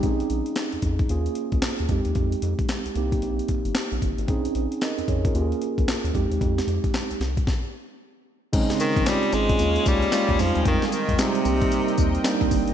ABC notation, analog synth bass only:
X:1
M:4/4
L:1/16
Q:"Swing 16ths" 1/4=113
K:Bbdor
V:1 name="Analog synth bass" clef=bass
B,,,2 B,,, z2 F,, F,,2 E,,2 z D,, z E,, F,, E,, | F,,2 F,, z2 C,, C,,2 B,,,2 z G,,, z B,,, G,,, A,,, | B,,,2 B,,, z2 F,, F,,2 E,,2 z D,, z E,, F,, E,, | F,,2 F,, z2 C,, C,,2 z8 |
B,,, z2 B,,, z2 A,,,2 E,,2 D,,2 z E,, F,, E,, | F,, z2 F,, z2 C,,2 z2 E,,2 z C,, G,,, A,,, |]